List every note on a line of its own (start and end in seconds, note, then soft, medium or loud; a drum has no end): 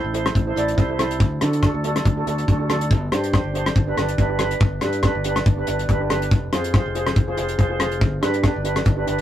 0.04 0.29 A1 medium
0.13 0.33 E4 medium
0.13 0.33 A4 medium
0.13 0.34 C5 loud
0.13 closed hi-hat medium
0.26 cross-stick medium
0.26 closed hi-hat medium
0.35 0.52 A1 loud
0.35 kick loud
0.35 closed hi-hat medium
0.46 0.52 E4 medium
0.46 0.53 A4 medium
0.46 0.53 C5 medium
0.55 0.73 A1 medium
0.55 0.69 E4 medium
0.55 0.70 A4 medium
0.55 0.70 D5 medium
0.55 closed hi-hat medium
0.68 closed hi-hat medium
0.76 1.20 C2 loud
0.76 0.84 E4 medium
0.76 0.84 A4 medium
0.76 0.85 C5 medium
0.76 kick medium
0.76 closed hi-hat medium
0.88 0.95 E4 medium
0.88 0.95 A4 medium
0.88 0.96 C5 medium
0.98 1.20 E4 loud
0.98 1.20 A4 medium
0.98 1.21 C5 loud
0.98 cross-stick medium
0.98 closed hi-hat medium
1.11 closed hi-hat medium
1.20 1.38 D2 loud
1.20 kick loud
1.20 closed hi-hat medium
1.41 1.68 D3 loud
1.41 1.55 D4 medium
1.41 1.55 F#4 medium
1.41 1.56 A4 medium
1.41 cross-stick medium
1.41 closed hi-hat medium
1.53 closed hi-hat medium
1.63 1.76 D4 medium
1.63 1.77 F#4 medium
1.63 1.77 A4 loud
1.63 kick medium
1.63 cross-stick medium
1.63 closed hi-hat medium
1.74 1.99 D2 medium
1.84 2.04 D4 loud
1.84 2.04 F#4 medium
1.84 2.04 A4 loud
1.84 closed hi-hat medium
1.96 cross-stick medium
1.96 closed hi-hat medium
2.05 2.23 D2 loud
2.05 kick loud
2.05 closed hi-hat medium
2.16 2.23 D4 medium
2.16 2.23 F#4 medium
2.16 2.23 A4 loud
2.26 2.44 D2 medium
2.26 2.40 D4 medium
2.26 2.40 F#4 medium
2.26 2.40 A4 loud
2.26 closed hi-hat medium
2.38 closed hi-hat medium
2.47 2.92 D2 loud
2.47 2.55 D4 medium
2.47 2.55 F#4 medium
2.47 2.55 A4 medium
2.47 kick medium
2.47 closed hi-hat medium
2.58 2.65 D4 medium
2.58 2.65 F#4 medium
2.58 2.66 A4 medium
2.68 2.90 D4 medium
2.68 2.91 F#4 medium
2.68 2.91 A4 loud
2.68 cross-stick medium
2.68 closed hi-hat medium
2.81 closed hi-hat medium
2.91 3.08 G1 loud
2.91 kick loud
2.91 closed hi-hat medium
3.12 3.38 G2 medium
3.12 3.25 D4 medium
3.12 3.26 G4 medium
3.12 3.26 C5 medium
3.12 cross-stick medium
3.12 closed hi-hat medium
3.24 closed hi-hat medium
3.32 3.46 D4 medium
3.32 3.47 G4 medium
3.32 3.47 C5 medium
3.32 kick medium
3.32 cross-stick medium
3.32 closed hi-hat medium
3.44 3.69 G1 medium
3.53 3.73 D4 medium
3.53 3.74 G4 medium
3.53 3.74 C5 loud
3.53 closed hi-hat medium
3.66 cross-stick medium
3.66 closed hi-hat medium
3.76 3.93 G1 loud
3.76 kick loud
3.76 closed hi-hat medium
3.87 3.93 D4 medium
3.87 3.93 G4 medium
3.87 3.94 B4 loud
3.97 4.14 G1 medium
3.97 4.10 D4 medium
3.97 4.11 G4 medium
3.97 4.11 B4 medium
3.97 cross-stick medium
3.97 closed hi-hat medium
4.08 closed hi-hat medium
4.18 4.53 G1 loud
4.18 4.25 D4 medium
4.18 4.25 G4 medium
4.18 4.26 B4 medium
4.18 kick medium
4.18 closed hi-hat medium
4.29 4.35 D4 medium
4.29 4.36 G4 medium
4.29 4.36 B4 medium
4.39 4.61 D4 medium
4.39 4.61 G4 medium
4.39 4.62 B4 loud
4.39 cross-stick medium
4.39 closed hi-hat medium
4.51 closed hi-hat medium
4.60 4.78 G1 medium
4.60 kick loud
4.60 closed hi-hat medium
4.81 5.09 G2 medium
4.81 4.96 D4 medium
4.81 4.96 G4 medium
4.81 4.96 B4 loud
4.81 cross-stick medium
4.81 closed hi-hat medium
4.93 closed hi-hat medium
5.03 5.17 D4 medium
5.03 5.17 G4 medium
5.03 5.18 B4 medium
5.03 kick medium
5.03 cross-stick medium
5.03 closed hi-hat medium
5.15 5.40 G1 medium
5.24 5.45 D4 medium
5.24 5.45 G4 medium
5.24 5.45 B4 loud
5.24 closed hi-hat medium
5.36 cross-stick medium
5.36 closed hi-hat medium
5.46 5.63 G1 medium
5.46 kick loud
5.46 closed hi-hat medium
5.57 5.63 D4 medium
5.57 5.64 G4 medium
5.57 5.64 B4 medium
5.67 5.85 G1 medium
5.67 5.81 D4 medium
5.67 5.81 G4 medium
5.67 5.81 B4 medium
5.67 closed hi-hat medium
5.79 closed hi-hat medium
5.89 6.31 G1 loud
5.89 5.96 D4 medium
5.89 5.96 G4 medium
5.89 5.96 B4 loud
5.89 kick medium
5.89 closed hi-hat medium
6.00 6.06 D4 medium
6.00 6.06 G4 medium
6.00 6.07 B4 medium
6.10 6.32 D4 medium
6.10 6.32 G4 medium
6.10 6.32 B4 loud
6.10 cross-stick medium
6.10 closed hi-hat medium
6.22 closed hi-hat medium
6.31 6.48 F1 medium
6.31 kick loud
6.31 closed hi-hat medium
6.53 6.79 F2 medium
6.53 6.66 F4 medium
6.53 6.66 G#4 medium
6.53 6.67 C5 loud
6.53 cross-stick medium
6.53 closed hi-hat medium
6.64 closed hi-hat medium
6.74 6.88 F4 medium
6.74 6.88 G#4 medium
6.74 6.88 C5 loud
6.74 kick loud
6.74 cross-stick medium
6.74 closed hi-hat medium
6.86 7.11 F1 medium
6.95 7.14 F4 medium
6.95 7.15 G#4 medium
6.95 7.15 C5 medium
6.95 closed hi-hat medium
7.07 cross-stick medium
7.07 closed hi-hat medium
7.16 7.33 F1 loud
7.16 kick loud
7.16 closed hi-hat medium
7.28 7.34 F4 medium
7.28 7.34 G#4 medium
7.28 7.34 C5 medium
7.37 7.55 F1 medium
7.37 7.51 F4 medium
7.37 7.51 G#4 medium
7.37 7.51 C5 medium
7.37 closed hi-hat medium
7.49 closed hi-hat medium
7.58 8.01 F1 loud
7.58 7.65 F4 loud
7.58 7.65 G#4 medium
7.58 7.66 C5 loud
7.58 kick medium
7.58 closed hi-hat medium
7.70 7.76 F4 medium
7.70 7.76 G#4 medium
7.70 7.76 C5 medium
7.79 8.01 F4 loud
7.79 8.01 G#4 medium
7.79 8.01 C5 loud
7.79 cross-stick medium
7.79 closed hi-hat medium
7.91 closed hi-hat medium
8.01 8.18 G1 loud
8.01 kick loud
8.01 closed hi-hat medium
8.21 8.49 G2 loud
8.21 8.35 D4 medium
8.21 8.36 G4 medium
8.21 8.36 B4 loud
8.21 cross-stick medium
8.21 closed hi-hat medium
8.34 closed hi-hat medium
8.42 8.56 D4 medium
8.42 8.57 G4 medium
8.42 8.57 B4 loud
8.42 kick medium
8.42 cross-stick medium
8.42 closed hi-hat medium
8.56 8.81 G1 medium
8.64 8.84 D4 medium
8.64 8.84 G4 medium
8.64 8.84 B4 loud
8.64 closed hi-hat medium
8.76 cross-stick medium
8.76 closed hi-hat medium
8.86 9.03 G1 loud
8.86 kick loud
8.86 closed hi-hat medium
8.96 9.03 D4 medium
8.96 9.03 G4 medium
8.96 9.03 B4 medium
9.07 9.21 G1 medium
9.07 9.21 D4 medium
9.07 9.21 G4 medium
9.07 9.21 B4 loud
9.07 closed hi-hat medium